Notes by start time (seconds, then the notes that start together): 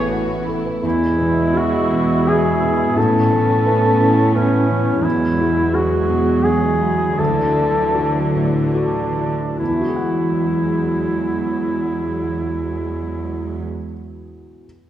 Already playing: A1 A2 E3 A3 B3 E4 A4 B4
0.09 F#4 B4
0.27 E4
0.46 E4 A4
0.65 B4
0.82 E2 G#3 E4
1.18 B2 B3
1.54 F#4 G#4
1.91 B2 G#4
2.26 F#4 G#4
2.61 B2 B3
2.95 A2 B3 C#4 A4
3.31 E3 C#4
3.66 E4 B4
4.00 E3 B4
4.34 C#4 E4 B4
4.68 E3 C#4
5.04 E2 E3 F#3 G#3 E4
5.39 B3 E4
5.73 F#4 G#4
6.09 B2 G#4
6.44 F#4 G#4
6.81 B3 E4
7.18 D2 D3 E3 F#3 A4
7.56 A3 E4
7.95 F#4 A4
8.34 A2 A4
8.75 D4 F#4 A4
9.17 A3 E4
9.58 E2 E3 F#3 G#3 E4
9.67 E3 E4
9.74 E4 F#4
9.81 F#4 G#4
9.88 G#4 F#5
9.95 F#5